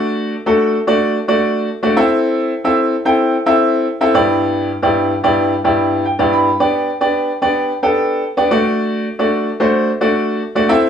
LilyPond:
\new Staff \with { instrumentName = "Grand piano" } { \time 4/4 \key d \mixolydian \tempo 4 = 110 << { r1 | r1 | r2. g''8 b''8 | r1 |
r1 | } \\ { <a d' fis' d''>8 r16 <a d' fis' a'>8 r16 <a d' fis' d''>8 r16 <a d' fis' d''>8. r16 <a d' fis' d''>16 <c' e' a' e''>8~ | <c' e' a' e''>8 r16 <c' e' a' e''>8 r16 <c' e' a' g''>8 r16 <c' e' a' e''>8. r16 <c' e' a' e''>16 <g, b e' g' d''>8~ | <g, b e' g' d''>8 r16 <g, b e' g' d''>8 r16 <g, b e' g' d''>8 r16 <g, b e' g' d''>8. r16 <g, b e' g' d''>8 r16 | <b d' g' d''>8 r16 <b d' g' d''>8 r16 <b d' g' d''>8 r16 <b d' g' a'>8. r16 <b d' g' d''>16 <a d' fis' d''>8~ |
<a d' fis' d''>8 r16 <a d' fis' d''>8 r16 <a d' fis' c''>8 r16 <a d' fis' d''>8. r16 <a d' fis' d''>16 <c' e' a' e''>8 | } >> }